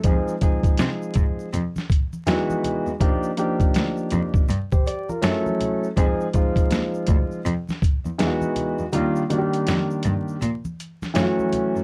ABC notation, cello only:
X:1
M:4/4
L:1/16
Q:"Swing 16ths" 1/4=81
K:Fdor
V:1 name="Cello" clef=bass
F,,4 C,2 A,,2 F,,4 =E,,3 E,, | E,,4 D,,2 F,,2 G,,4 _G,,4 | F,,4 E,,2 D,,2 F,,3 =E,, E,,3 E,, | E,,4 F,,2 G,,2 B,,4 _G,,3 G,, |]